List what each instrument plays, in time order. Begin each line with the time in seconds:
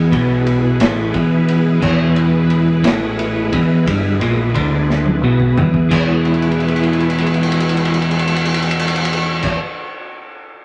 Already playing: clean electric guitar E2, string machine E4 G#4 B4
0.12 picked electric bass B1, clean electric guitar B2, kick, ride
0.46 ride
0.80 picked electric bass A1, clean electric guitar A2, snare, ride
1.14 picked electric bass E1, clean electric guitar E2, kick, ride
1.48 ride
1.81 picked electric bass E1, clean electric guitar E2, kick, crash
2.16 ride
2.50 ride
2.84 picked electric bass A1, clean electric guitar A2, snare, ride
3.19 ride
3.52 picked electric bass E1, clean electric guitar E2, kick, ride
3.86 picked electric bass G1, clean electric guitar G2, kick, ride
4.19 picked electric bass A#1, clean electric guitar A#2, ride
4.55 picked electric bass D2, clean electric guitar D3, kick, ride
4.90 snare
5.06 high tom
5.21 picked electric bass B1, clean electric guitar B2
5.40 kick
5.56 picked electric bass E1, clean electric guitar E2, floor tom
5.74 kick
5.89 picked electric bass E1, clean electric guitar E3 G#3 B3 E4, string machine E4 G#4 B4, kick, crash
6.25 crash
6.34 ride
6.42 crash
6.52 ride
6.60 crash
6.68 ride
6.76 crash
6.84 ride
6.93 crash
7.00 ride
7.10 crash
7.18 ride
7.26 crash
7.34 ride
7.43 crash
7.52 ride
7.60 crash
7.69 ride
7.77 crash
7.85 ride
7.94 crash
8.02 ride
8.11 crash
8.19 ride
8.28 crash
8.36 ride
8.45 crash
8.54 ride
8.62 crash
8.71 ride
8.79 crash
8.88 ride
8.96 crash
9.05 ride
9.13 crash
9.42 kick, crash